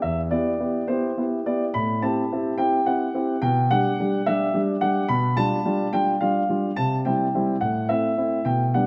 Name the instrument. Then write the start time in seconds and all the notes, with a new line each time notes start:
grand piano
0.02 E2 E5
0.31 B3 E4 G4 D5
0.60 B3 E4 G4
0.88 B3 E4 G4 C5
1.18 B3 E4 G4
1.46 B3 E4 G4 D5
1.74 A2 B5
2.02 C4 E4 G4 A5
2.32 C4 E4 G4
2.58 C4 E4 G4 G5
2.86 C4 E4 G4 F#5
3.14 C4 E4 G4
3.42 B2 G5
3.71 G3 D4 G4 F#5
4.00 G3 D4 G4
4.26 G3 D4 G4 E5
4.54 G3 D4 G4
4.81 G3 D4 G4 F#5
5.09 B2 B5
5.37 G3 D4 F4 A5
5.65 G3 D4 F4
5.93 G3 D4 F4 G5
6.21 G3 D4 F4 F5
6.49 G3 D4 F4
6.76 C3 A5
7.05 G3 C4 E4 G5
7.35 G3 C4 E4
7.61 A2 F#5
7.89 A3 C4 E4 E5
8.17 A3 C4 E4
8.45 B2 G5
8.74 G3 B3 D4 F#5